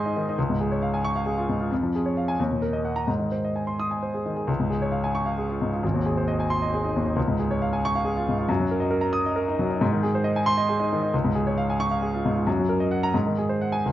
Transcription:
grand piano
Already playing: G#2 D#3 G#4 C5 D#5 G#5 C6
0.06 D#4
0.16 D#3
0.29 D#4
0.38 C#2
0.50 G#2
0.61 G#4
0.72 C#5
0.82 F5
0.94 G#5
1.05 C#6
1.16 F5
1.26 G#4
1.38 F4
1.49 G#2
1.60 F4
1.71 F2
1.83 F3
1.95 G#4
2.06 C#5
2.17 F5
2.28 G#5
2.40 D#2
2.51 A#2
2.62 A#4
2.73 D#5
2.85 F#5
2.96 A#5
3.08 G#2
3.19 D#3
3.32 C5
3.45 D#5
3.56 G#5
3.67 C6
3.80 D#6
3.91 G#5
4.03 C5
4.14 G#4
4.26 D#3
4.36 G#4
4.47 C#2
4.60 G#2
4.70 G#4
4.82 C#5
4.92 F5
5.04 G#5
5.15 C#6
5.26 F5
5.38 G#4
5.50 F4
5.62 G#2
5.73 F4
5.83 G#1
5.94 D#2
6.06 G#4
6.17 C5
6.28 D#5
6.40 G#5
6.50 C6
6.62 D#5
6.74 G#4
6.84 D#4
6.96 D#2
7.06 D#4
7.16 C#2
7.28 G#2
7.39 G#4
7.51 C#5
7.62 F5
7.73 G#5
7.85 C#6
7.95 F5
8.05 G#4
8.17 F4
8.29 G#2
8.38 F4
8.49 F#2
8.60 F#3
8.71 A#4
8.80 D#5
8.91 A#4
9.01 A#5
9.13 D#6
9.26 D#5
9.36 A#4
9.48 D#4
9.59 F#3
9.71 D#4
9.81 G#2
9.92 D#3
10.03 G#4
10.15 C5
10.24 D#5
10.36 G#5
10.46 C6
10.58 D#5
10.69 G#4
10.80 D#4
10.92 D#3
11.03 D#4
11.14 C#2
11.24 G#2
11.35 G#4
11.47 C#5
11.58 F5
11.70 G#5
11.80 C#6
11.91 F5
12.02 G#4
12.14 F4
12.26 G#2
12.36 F4
12.47 F#2
12.58 F#3
12.69 A#4
12.80 D#5
12.91 F#5
13.03 A#5
13.14 G#2
13.26 D#3
13.38 G#4
13.49 C5
13.61 F#5
13.72 G#5
13.86 C#2

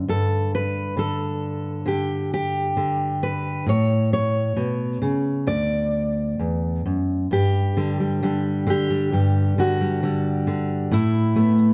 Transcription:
steel-string acoustic guitar
Already playing: D3
0.08 G2 A4
0.55 B4
0.97 D3 A4
1.86 D3 G4
2.34 G4
2.77 D3
3.23 B4
3.66 A2 C#5
4.13 C#5
4.56 B2
5.02 C#3
5.47 D2 D5
6.39 E2
6.86 F#2
7.31 G2 G4
7.77 D3 G3
8.00 G3
8.23 D3 G3
8.67 D3 G4
8.90 G3
9.12 G2 G3
9.58 D3 F#4
9.81 G3
10.03 D3 G3
10.47 D3
10.91 A2 E4
11.36 A3 B3
11.58 B3

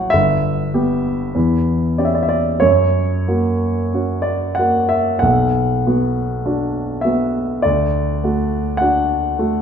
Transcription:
grand piano
Already playing: F#3 C#4 F#4 F#5 G5
0.10 G1 E5
0.74 B3 G4
1.35 E2
1.98 C#4 G4 D5
2.05 E5
2.15 D5
2.23 E5
2.29 D5
2.60 F#2 C#5
3.28 A#3 F#4
3.94 C#4 F#4
4.22 D5
4.55 A#3 F#4 F#5
4.89 E5
5.19 B1 F#5
5.87 B3 F#4
6.46 D4 F#4
7.01 B3 F#4 E5
7.62 D2 D5
8.24 A3 F#4
8.77 D4 F#5
8.81 F#4
9.39 A3 F#4

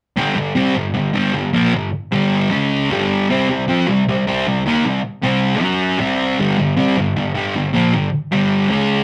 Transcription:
distorted electric guitar
0.17 G2 D3 G3
0.35 G2 D3
0.55 C3 G3 C4
0.75 G2 D3
0.94 G2 D3
1.14 G2 D3 G3
1.34 G2 D3
1.53 A#2 F3 A#3
1.74 G2 D3
2.12 G2 D3 G3
2.51 C#3 G#3 C#4
2.91 G2 D3 G3
3.30 C3 G3 C4
3.50 C3 G3
3.69 F3 C4 F4
3.88 C3 G3
4.09 C3 G3
4.27 C3 G3 C4
4.47 C3 G3
4.66 D#3 A#3 D#4
4.85 C3 G3
5.22 C3 G3 C4
5.61 F#3 C#4 F#4
5.99 C3 G3 C4
6.38 G2 D3 G3
6.58 G2 D3
6.77 C3 G3 C4
6.97 G2 D3
7.16 G2 D3
7.35 G2 D3 G3
7.55 G2 D3
7.74 A#2 F3 A#3
7.94 G2 D3
8.32 G2 D3 G3
8.70 C#3 G#3 C#4

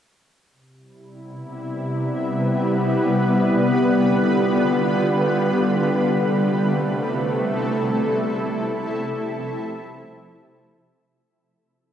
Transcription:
ambient pad
0.51 C3
0.79 G3 E4
1.11 B3
1.63 B4
3.17 D3
3.65 F4
5.85 C3
6.02 A3
6.51 A4
6.55 E4
8.62 F3

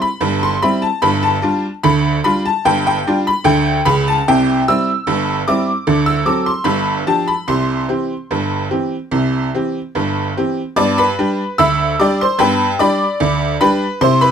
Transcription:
honky-tonk piano
0.02 B5
0.21 G1 G2
0.43 C6
0.62 G3 C4 E4 B5
0.82 A5
1.02 G1 G2 B5
1.23 A5
1.42 G3 D4 F4
1.83 D2 D3 B5
2.24 G3 D4 F4 B5
2.45 A5
2.65 G1 G2 G5
2.87 G5
3.07 G3 D4 F4
3.27 B5
3.44 D2 D3 G5
3.85 C#2 C#3 B5
4.08 A5
4.28 C2 C3 G5
4.68 G3 C4 E4 E6
5.07 G1 G2
5.48 G3 C4 E4 D6
5.87 D2 D3
6.06 E6
6.26 F#3 C4 A4 D6
6.46 C6
6.64 G1 G2 B5
7.07 F3 D4 G4 A5
7.28 B5
7.48 C2 C3 C6
7.88 E3 C4 G4
8.31 G1 G2
8.70 E3 C4 G4
9.11 C2 C3
9.54 E3 C4 G4
9.95 G1 G2
10.37 E3 C4 G4
10.76 G2 B3 D5 D6
10.98 B4 B5
11.19 G3 D4 G4
11.58 D2 E5 B5 E6
12.00 G3 D4 G4 D5 D6
12.21 C5 C6
12.39 G2 B3 B4 G5 B5
12.79 G3 D4 G4 D5 B5 D6
13.20 D2
13.61 G3 D4 G4 B4 B5
14.01 C3 E4 C5 C6
14.21 B4 B5

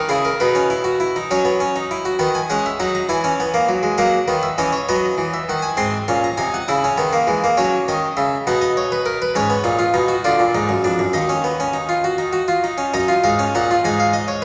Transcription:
harpsichord
0.09 C#3 E4 G#4
0.25 A#4
0.40 B2 D#4 B4
0.55 C#4
0.70 E4
0.84 F#4
1.00 E4
1.16 D#4
1.31 F#3 C#4 C#5
1.45 B3
1.60 C#4
1.76 D#4
1.91 E4
2.05 F#4
2.19 D#3 B3 F#5
2.35 G#5
2.50 G#3 C#4 F#5
2.66 E5
2.80 F#3 D#4 F#5
2.95 A#5
3.09 E3 E4 G#5
3.24 C#4
3.40 B3
3.54 A#3
3.69 F#3
3.83 G#3
3.98 F#3 A#3 F#5
4.28 D#3 B3
4.43 E5
4.58 E3 C#4 D#5
4.73 C#5
4.89 F#3 B3 D#5
5.18 E3
5.34 E5
5.49 D#3 F#5
5.62 G#5
5.77 G#2 C4 C6
6.08 A#2 C#4
6.24 A#5
6.38 C3 D#4 G#5
6.54 F#5
6.68 C#3 E4 E5
6.84 C#4
6.98 D#3 B3
7.13 A#3
7.27 E3 G#3
7.44 A#3
7.57 F#3 C#4 C#5
7.88 D#3 D#5
8.17 C#3 E5
8.47 B2 D#4 F#5
8.61 D#5
8.77 C#5
8.92 B4
9.06 A#4
9.22 B4
9.35 G#2 C#4 C#5
9.50 B3
9.64 A#2 D#4
9.79 F4
9.94 B2 D#4
10.08 F#4
10.25 D3 F4 D5
10.39 A#2
10.55 G#2 D#4
10.69 F#2
10.84 F2 D4
10.99 F#2
11.13 D#2 D#4 D#5
11.29 C#4
11.44 B3
11.60 C#4
11.74 D#4
11.89 F4
12.04 F#4
12.18 D#4
12.33 F#4
12.48 F4
12.64 D#4
12.78 C#4
12.94 F#2 D#4 D#5
13.08 F4
13.24 G#2 D#4 F5
13.39 C#4
13.55 A#2 D#4 F#5
13.71 F4
13.84 G#2 D#4 G#5
14.00 F5
14.13 D#5
14.28 C#5

